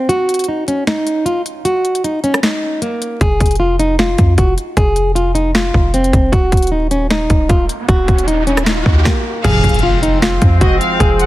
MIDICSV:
0, 0, Header, 1, 9, 480
1, 0, Start_track
1, 0, Tempo, 389610
1, 116, Time_signature, 4, 2, 24, 8
1, 13875, End_track
2, 0, Start_track
2, 0, Title_t, "Violin section"
2, 0, Program_c, 0, 48
2, 11636, Note_on_c, 0, 77, 110
2, 12087, Note_off_c, 0, 77, 0
2, 13076, Note_on_c, 0, 75, 83
2, 13304, Note_off_c, 0, 75, 0
2, 13316, Note_on_c, 0, 77, 78
2, 13544, Note_off_c, 0, 77, 0
2, 13795, Note_on_c, 0, 78, 82
2, 13875, Note_off_c, 0, 78, 0
2, 13875, End_track
3, 0, Start_track
3, 0, Title_t, "Nylon-string guitar"
3, 0, Program_c, 1, 24
3, 111, Note_on_c, 1, 66, 105
3, 564, Note_off_c, 1, 66, 0
3, 595, Note_on_c, 1, 63, 75
3, 783, Note_off_c, 1, 63, 0
3, 835, Note_on_c, 1, 61, 84
3, 1023, Note_off_c, 1, 61, 0
3, 1075, Note_on_c, 1, 63, 94
3, 1527, Note_off_c, 1, 63, 0
3, 1548, Note_on_c, 1, 65, 84
3, 1739, Note_off_c, 1, 65, 0
3, 2034, Note_on_c, 1, 66, 102
3, 2486, Note_off_c, 1, 66, 0
3, 2515, Note_on_c, 1, 63, 81
3, 2704, Note_off_c, 1, 63, 0
3, 2755, Note_on_c, 1, 61, 76
3, 2944, Note_off_c, 1, 61, 0
3, 2997, Note_on_c, 1, 63, 81
3, 3447, Note_off_c, 1, 63, 0
3, 3471, Note_on_c, 1, 58, 82
3, 3924, Note_off_c, 1, 58, 0
3, 3959, Note_on_c, 1, 68, 102
3, 4408, Note_off_c, 1, 68, 0
3, 4431, Note_on_c, 1, 65, 72
3, 4621, Note_off_c, 1, 65, 0
3, 4674, Note_on_c, 1, 63, 77
3, 4863, Note_off_c, 1, 63, 0
3, 4917, Note_on_c, 1, 65, 92
3, 5367, Note_off_c, 1, 65, 0
3, 5394, Note_on_c, 1, 66, 79
3, 5583, Note_off_c, 1, 66, 0
3, 5876, Note_on_c, 1, 68, 97
3, 6327, Note_off_c, 1, 68, 0
3, 6350, Note_on_c, 1, 65, 81
3, 6540, Note_off_c, 1, 65, 0
3, 6588, Note_on_c, 1, 63, 75
3, 6779, Note_off_c, 1, 63, 0
3, 6837, Note_on_c, 1, 65, 79
3, 7287, Note_off_c, 1, 65, 0
3, 7317, Note_on_c, 1, 60, 87
3, 7767, Note_off_c, 1, 60, 0
3, 7789, Note_on_c, 1, 66, 107
3, 8243, Note_off_c, 1, 66, 0
3, 8275, Note_on_c, 1, 63, 76
3, 8463, Note_off_c, 1, 63, 0
3, 8515, Note_on_c, 1, 61, 83
3, 8703, Note_off_c, 1, 61, 0
3, 8756, Note_on_c, 1, 63, 98
3, 9207, Note_off_c, 1, 63, 0
3, 9230, Note_on_c, 1, 65, 86
3, 9420, Note_off_c, 1, 65, 0
3, 9713, Note_on_c, 1, 66, 101
3, 10165, Note_off_c, 1, 66, 0
3, 10196, Note_on_c, 1, 63, 81
3, 10384, Note_off_c, 1, 63, 0
3, 10435, Note_on_c, 1, 61, 78
3, 10623, Note_off_c, 1, 61, 0
3, 10676, Note_on_c, 1, 63, 81
3, 11127, Note_off_c, 1, 63, 0
3, 11150, Note_on_c, 1, 58, 87
3, 11604, Note_off_c, 1, 58, 0
3, 11638, Note_on_c, 1, 68, 108
3, 12088, Note_off_c, 1, 68, 0
3, 12109, Note_on_c, 1, 65, 74
3, 12300, Note_off_c, 1, 65, 0
3, 12351, Note_on_c, 1, 63, 80
3, 12541, Note_off_c, 1, 63, 0
3, 12596, Note_on_c, 1, 65, 100
3, 13047, Note_off_c, 1, 65, 0
3, 13073, Note_on_c, 1, 66, 82
3, 13262, Note_off_c, 1, 66, 0
3, 13556, Note_on_c, 1, 68, 102
3, 13875, Note_off_c, 1, 68, 0
3, 13875, End_track
4, 0, Start_track
4, 0, Title_t, "Brass ensemble"
4, 0, Program_c, 2, 61
4, 11636, Note_on_c, 2, 53, 92
4, 11636, Note_on_c, 2, 56, 82
4, 11636, Note_on_c, 2, 60, 97
4, 13875, Note_off_c, 2, 53, 0
4, 13875, Note_off_c, 2, 56, 0
4, 13875, Note_off_c, 2, 60, 0
4, 13875, End_track
5, 0, Start_track
5, 0, Title_t, "Analog polysynth"
5, 0, Program_c, 3, 90
5, 11635, Note_on_c, 3, 53, 108
5, 11636, Note_on_c, 3, 44, 104
5, 11636, Note_on_c, 3, 48, 102
5, 11839, Note_off_c, 3, 44, 0
5, 11839, Note_off_c, 3, 53, 0
5, 11840, Note_off_c, 3, 48, 0
5, 13875, End_track
6, 0, Start_track
6, 0, Title_t, "808-style bass"
6, 0, Program_c, 4, 38
6, 3955, Note_on_c, 4, 29, 115
6, 4186, Note_off_c, 4, 29, 0
6, 4195, Note_on_c, 4, 29, 103
6, 5117, Note_off_c, 4, 29, 0
6, 5155, Note_on_c, 4, 41, 106
6, 5386, Note_off_c, 4, 41, 0
6, 5395, Note_on_c, 4, 29, 111
6, 5626, Note_off_c, 4, 29, 0
6, 5875, Note_on_c, 4, 29, 115
6, 7027, Note_off_c, 4, 29, 0
6, 7076, Note_on_c, 4, 29, 104
6, 7536, Note_off_c, 4, 29, 0
6, 7555, Note_on_c, 4, 29, 104
6, 7786, Note_off_c, 4, 29, 0
6, 7795, Note_on_c, 4, 27, 110
6, 8026, Note_off_c, 4, 27, 0
6, 8035, Note_on_c, 4, 27, 103
6, 8957, Note_off_c, 4, 27, 0
6, 8995, Note_on_c, 4, 27, 104
6, 9226, Note_off_c, 4, 27, 0
6, 9235, Note_on_c, 4, 27, 109
6, 9466, Note_off_c, 4, 27, 0
6, 9715, Note_on_c, 4, 27, 115
6, 9946, Note_off_c, 4, 27, 0
6, 9956, Note_on_c, 4, 27, 107
6, 10877, Note_off_c, 4, 27, 0
6, 10916, Note_on_c, 4, 39, 103
6, 11146, Note_off_c, 4, 39, 0
6, 11636, Note_on_c, 4, 29, 117
6, 11866, Note_off_c, 4, 29, 0
6, 11875, Note_on_c, 4, 29, 105
6, 12797, Note_off_c, 4, 29, 0
6, 12835, Note_on_c, 4, 41, 103
6, 13066, Note_off_c, 4, 41, 0
6, 13075, Note_on_c, 4, 29, 106
6, 13306, Note_off_c, 4, 29, 0
6, 13555, Note_on_c, 4, 29, 115
6, 13875, Note_off_c, 4, 29, 0
6, 13875, End_track
7, 0, Start_track
7, 0, Title_t, "Impact"
7, 0, Program_c, 5, 103
7, 11635, Note_on_c, 5, 60, 88
7, 13555, Note_off_c, 5, 60, 0
7, 13875, End_track
8, 0, Start_track
8, 0, Title_t, "Riser"
8, 0, Program_c, 6, 103
8, 7795, Note_on_c, 6, 60, 85
8, 11155, Note_off_c, 6, 60, 0
8, 13875, End_track
9, 0, Start_track
9, 0, Title_t, "Drums"
9, 115, Note_on_c, 9, 42, 80
9, 239, Note_off_c, 9, 42, 0
9, 356, Note_on_c, 9, 42, 73
9, 419, Note_off_c, 9, 42, 0
9, 419, Note_on_c, 9, 42, 58
9, 483, Note_off_c, 9, 42, 0
9, 483, Note_on_c, 9, 42, 50
9, 540, Note_off_c, 9, 42, 0
9, 540, Note_on_c, 9, 42, 40
9, 663, Note_off_c, 9, 42, 0
9, 836, Note_on_c, 9, 42, 79
9, 959, Note_off_c, 9, 42, 0
9, 1075, Note_on_c, 9, 38, 115
9, 1075, Note_on_c, 9, 42, 89
9, 1084, Note_on_c, 9, 26, 97
9, 1198, Note_off_c, 9, 38, 0
9, 1198, Note_off_c, 9, 42, 0
9, 1207, Note_off_c, 9, 26, 0
9, 1313, Note_on_c, 9, 42, 68
9, 1437, Note_off_c, 9, 42, 0
9, 1554, Note_on_c, 9, 42, 73
9, 1677, Note_off_c, 9, 42, 0
9, 1797, Note_on_c, 9, 42, 81
9, 1920, Note_off_c, 9, 42, 0
9, 2035, Note_on_c, 9, 42, 78
9, 2158, Note_off_c, 9, 42, 0
9, 2276, Note_on_c, 9, 42, 42
9, 2399, Note_off_c, 9, 42, 0
9, 2403, Note_on_c, 9, 42, 72
9, 2518, Note_off_c, 9, 42, 0
9, 2518, Note_on_c, 9, 42, 85
9, 2641, Note_off_c, 9, 42, 0
9, 2755, Note_on_c, 9, 42, 47
9, 2879, Note_off_c, 9, 42, 0
9, 2883, Note_on_c, 9, 37, 98
9, 2883, Note_on_c, 9, 42, 74
9, 2995, Note_off_c, 9, 42, 0
9, 2995, Note_on_c, 9, 38, 119
9, 2995, Note_on_c, 9, 42, 89
9, 3004, Note_on_c, 9, 26, 92
9, 3006, Note_off_c, 9, 37, 0
9, 3118, Note_off_c, 9, 38, 0
9, 3118, Note_off_c, 9, 42, 0
9, 3127, Note_off_c, 9, 26, 0
9, 3473, Note_on_c, 9, 42, 72
9, 3597, Note_off_c, 9, 42, 0
9, 3718, Note_on_c, 9, 42, 77
9, 3841, Note_off_c, 9, 42, 0
9, 3955, Note_on_c, 9, 36, 123
9, 3955, Note_on_c, 9, 42, 78
9, 4078, Note_off_c, 9, 42, 0
9, 4079, Note_off_c, 9, 36, 0
9, 4195, Note_on_c, 9, 42, 72
9, 4196, Note_on_c, 9, 36, 87
9, 4259, Note_off_c, 9, 42, 0
9, 4259, Note_on_c, 9, 42, 61
9, 4319, Note_off_c, 9, 36, 0
9, 4323, Note_off_c, 9, 42, 0
9, 4323, Note_on_c, 9, 42, 52
9, 4380, Note_off_c, 9, 42, 0
9, 4380, Note_on_c, 9, 42, 40
9, 4503, Note_off_c, 9, 42, 0
9, 4676, Note_on_c, 9, 42, 79
9, 4799, Note_off_c, 9, 42, 0
9, 4915, Note_on_c, 9, 38, 120
9, 4915, Note_on_c, 9, 42, 86
9, 4924, Note_on_c, 9, 26, 91
9, 5038, Note_off_c, 9, 38, 0
9, 5038, Note_off_c, 9, 42, 0
9, 5047, Note_off_c, 9, 26, 0
9, 5153, Note_on_c, 9, 42, 67
9, 5156, Note_on_c, 9, 36, 90
9, 5276, Note_off_c, 9, 42, 0
9, 5279, Note_off_c, 9, 36, 0
9, 5393, Note_on_c, 9, 42, 75
9, 5395, Note_on_c, 9, 36, 96
9, 5516, Note_off_c, 9, 42, 0
9, 5519, Note_off_c, 9, 36, 0
9, 5638, Note_on_c, 9, 42, 77
9, 5761, Note_off_c, 9, 42, 0
9, 5875, Note_on_c, 9, 36, 125
9, 5875, Note_on_c, 9, 42, 77
9, 5998, Note_off_c, 9, 42, 0
9, 5999, Note_off_c, 9, 36, 0
9, 6112, Note_on_c, 9, 42, 67
9, 6235, Note_off_c, 9, 42, 0
9, 6358, Note_on_c, 9, 42, 84
9, 6481, Note_off_c, 9, 42, 0
9, 6596, Note_on_c, 9, 42, 75
9, 6719, Note_off_c, 9, 42, 0
9, 6835, Note_on_c, 9, 38, 116
9, 6835, Note_on_c, 9, 42, 88
9, 6844, Note_on_c, 9, 26, 94
9, 6958, Note_off_c, 9, 38, 0
9, 6958, Note_off_c, 9, 42, 0
9, 6967, Note_off_c, 9, 26, 0
9, 7075, Note_on_c, 9, 36, 92
9, 7199, Note_off_c, 9, 36, 0
9, 7315, Note_on_c, 9, 42, 77
9, 7438, Note_off_c, 9, 42, 0
9, 7443, Note_on_c, 9, 42, 43
9, 7555, Note_on_c, 9, 36, 92
9, 7557, Note_off_c, 9, 42, 0
9, 7557, Note_on_c, 9, 42, 80
9, 7678, Note_off_c, 9, 36, 0
9, 7680, Note_off_c, 9, 42, 0
9, 7795, Note_on_c, 9, 36, 122
9, 7795, Note_on_c, 9, 42, 77
9, 7918, Note_off_c, 9, 36, 0
9, 7918, Note_off_c, 9, 42, 0
9, 8035, Note_on_c, 9, 36, 83
9, 8035, Note_on_c, 9, 42, 71
9, 8098, Note_off_c, 9, 42, 0
9, 8098, Note_on_c, 9, 42, 62
9, 8158, Note_off_c, 9, 36, 0
9, 8162, Note_off_c, 9, 42, 0
9, 8162, Note_on_c, 9, 42, 51
9, 8218, Note_off_c, 9, 42, 0
9, 8218, Note_on_c, 9, 42, 41
9, 8342, Note_off_c, 9, 42, 0
9, 8515, Note_on_c, 9, 42, 81
9, 8638, Note_off_c, 9, 42, 0
9, 8754, Note_on_c, 9, 38, 118
9, 8754, Note_on_c, 9, 42, 90
9, 8763, Note_on_c, 9, 26, 98
9, 8877, Note_off_c, 9, 42, 0
9, 8878, Note_off_c, 9, 38, 0
9, 8887, Note_off_c, 9, 26, 0
9, 8993, Note_on_c, 9, 42, 67
9, 8995, Note_on_c, 9, 36, 94
9, 9116, Note_off_c, 9, 42, 0
9, 9118, Note_off_c, 9, 36, 0
9, 9233, Note_on_c, 9, 42, 73
9, 9235, Note_on_c, 9, 36, 99
9, 9356, Note_off_c, 9, 42, 0
9, 9359, Note_off_c, 9, 36, 0
9, 9477, Note_on_c, 9, 42, 79
9, 9600, Note_off_c, 9, 42, 0
9, 9714, Note_on_c, 9, 42, 79
9, 9715, Note_on_c, 9, 36, 127
9, 9838, Note_off_c, 9, 42, 0
9, 9839, Note_off_c, 9, 36, 0
9, 9955, Note_on_c, 9, 42, 43
9, 9956, Note_on_c, 9, 36, 87
9, 10079, Note_off_c, 9, 36, 0
9, 10079, Note_off_c, 9, 42, 0
9, 10083, Note_on_c, 9, 42, 73
9, 10198, Note_off_c, 9, 42, 0
9, 10198, Note_on_c, 9, 42, 82
9, 10321, Note_off_c, 9, 42, 0
9, 10436, Note_on_c, 9, 42, 46
9, 10559, Note_off_c, 9, 42, 0
9, 10563, Note_on_c, 9, 37, 98
9, 10563, Note_on_c, 9, 42, 76
9, 10674, Note_off_c, 9, 42, 0
9, 10674, Note_on_c, 9, 38, 115
9, 10674, Note_on_c, 9, 42, 88
9, 10684, Note_on_c, 9, 26, 92
9, 10686, Note_off_c, 9, 37, 0
9, 10798, Note_off_c, 9, 38, 0
9, 10798, Note_off_c, 9, 42, 0
9, 10807, Note_off_c, 9, 26, 0
9, 10915, Note_on_c, 9, 36, 91
9, 11039, Note_off_c, 9, 36, 0
9, 11155, Note_on_c, 9, 36, 114
9, 11155, Note_on_c, 9, 38, 92
9, 11278, Note_off_c, 9, 36, 0
9, 11278, Note_off_c, 9, 38, 0
9, 11635, Note_on_c, 9, 36, 125
9, 11635, Note_on_c, 9, 42, 81
9, 11635, Note_on_c, 9, 49, 109
9, 11758, Note_off_c, 9, 36, 0
9, 11758, Note_off_c, 9, 42, 0
9, 11758, Note_off_c, 9, 49, 0
9, 11875, Note_on_c, 9, 36, 92
9, 11875, Note_on_c, 9, 42, 74
9, 11939, Note_off_c, 9, 42, 0
9, 11939, Note_on_c, 9, 42, 61
9, 11998, Note_off_c, 9, 36, 0
9, 12003, Note_off_c, 9, 42, 0
9, 12003, Note_on_c, 9, 42, 51
9, 12059, Note_off_c, 9, 42, 0
9, 12059, Note_on_c, 9, 42, 40
9, 12182, Note_off_c, 9, 42, 0
9, 12355, Note_on_c, 9, 42, 82
9, 12478, Note_off_c, 9, 42, 0
9, 12595, Note_on_c, 9, 38, 119
9, 12595, Note_on_c, 9, 42, 92
9, 12604, Note_on_c, 9, 26, 98
9, 12718, Note_off_c, 9, 38, 0
9, 12718, Note_off_c, 9, 42, 0
9, 12728, Note_off_c, 9, 26, 0
9, 12833, Note_on_c, 9, 42, 69
9, 12835, Note_on_c, 9, 36, 95
9, 12956, Note_off_c, 9, 42, 0
9, 12958, Note_off_c, 9, 36, 0
9, 13074, Note_on_c, 9, 42, 74
9, 13075, Note_on_c, 9, 36, 101
9, 13197, Note_off_c, 9, 42, 0
9, 13198, Note_off_c, 9, 36, 0
9, 13318, Note_on_c, 9, 42, 80
9, 13441, Note_off_c, 9, 42, 0
9, 13555, Note_on_c, 9, 36, 124
9, 13555, Note_on_c, 9, 42, 81
9, 13678, Note_off_c, 9, 36, 0
9, 13678, Note_off_c, 9, 42, 0
9, 13792, Note_on_c, 9, 42, 71
9, 13875, Note_off_c, 9, 42, 0
9, 13875, End_track
0, 0, End_of_file